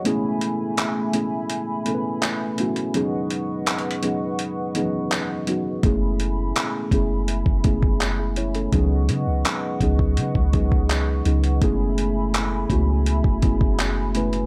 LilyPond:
<<
  \new Staff \with { instrumentName = "Analog synth pad" } { \time 4/4 \key fis \dorian \tempo 4 = 83 <a e'' gis'' b''>1 | <b' dis'' fis'' cis'''>1 | <a e'' gis'' b''>1 | <b' dis'' fis'' cis'''>1 |
<a e'' gis'' b''>1 | }
  \new Staff \with { instrumentName = "Synth keys" } { \time 4/4 \key fis \dorian << { cis''16 r2. r8. | r1 | r2. r16 <gis' e''>16 <e' cis''>16 <cis' a'>16~ | <cis' a'>16 r2. r8. |
r1 | } \\ { <a b cis' e' gis'>4~ <a b cis' e' gis'>16 r16 <a b cis' e' gis'>4 <a b cis' e' a' b'>4 <a b cis' e' fis'>8 | <fis b cis' dis' gis'>4~ <fis b cis' dis' gis'>16 r16 <fis b cis' dis' gis'>4 <e fis b cis' dis' gis'>4 <fis b cis' dis' fis'>8 | <a b cis' e' gis'>4~ <a b cis' e' gis'>16 r16 <a b cis' e' gis'>4 <a b cis' e' gis'>4 r8 | <fis b cis' dis' gis'>4~ <fis b cis' dis' gis'>16 r16 <fis b cis' dis' gis'>4 <fis b cis' dis' gis'>4 <fis b cis' dis' gis'>8 |
<a b cis' e' gis'>4~ <a b cis' e' gis'>16 r16 <a b cis' e' fis'>4 <a b cis' e' gis'>4 <a b cis' e' b'>8 | } >> }
  \new Staff \with { instrumentName = "808-style bass" } { \clef bass \time 4/4 \key fis \dorian r1 | r1 | fis,,4 r8 fis,,8. fis,,16 fis,,4. | cis,8 cis16 cis,16 r8 cis,8 cis16 cis,4~ cis,16 cis,8 |
fis,,4. cis,8. fis,,16 fis,,4. | }
  \new DrumStaff \with { instrumentName = "Drums" } \drummode { \time 4/4 hh8 hh8 <hc hh>8 hh8 hh8 hh8 <hc hh>8 hh16 hh16 | hh8 hh8 \tuplet 3/2 { <hc hh>16 hh16 hh16 hh16 r16 r16 } hh8 hh8 <hc hh>8 hh8 | <hh bd>8 hh8 <hc hh>8 <hh bd>8 hh16 bd16 <hh bd>16 bd16 <hc hh>8 hh16 hh16 | <hh bd>8 hh8 <hc hh>8 <hh bd>16 bd16 hh16 bd16 <hh bd>16 bd16 <hc hh>8 hh16 hh16 |
<hh bd>8 hh8 <hc hh>8 <hh bd>8 hh16 bd16 <hh bd>16 bd16 <hc hh>8 hh16 hh16 | }
>>